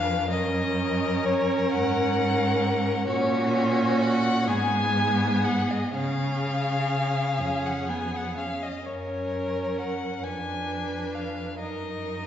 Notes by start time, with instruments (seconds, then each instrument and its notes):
Already playing: cello F2, viola D4, violin B4 F5
0.30 cello F#2, viola C#4, violin A#4 D#5
1.26 violin C#5
1.72 cello G#2, violin F#5
3.07 cello A#2, viola C#4, violin F#4 C#5
4.01 violin F#5
4.47 cello G#2, viola B3, violin G#4 G#5
5.44 violin F#5
5.70 violin D#5
5.92 cello C#3, viola C#4, violin G#4 F5
7.39 cello F2, viola C#4
7.66 violin F#5
7.89 viola B3, violin G#5
8.16 violin F#5
8.37 viola C#4, violin F5
8.63 violin D#5
8.85 cello F#2, viola C#4, violin A#4 C#5
9.78 violin F#5
10.23 cello F2, viola D4, violin B4 G#5
11.15 violin F5
11.59 cello F#2, viola D#4, violin A#4 D#5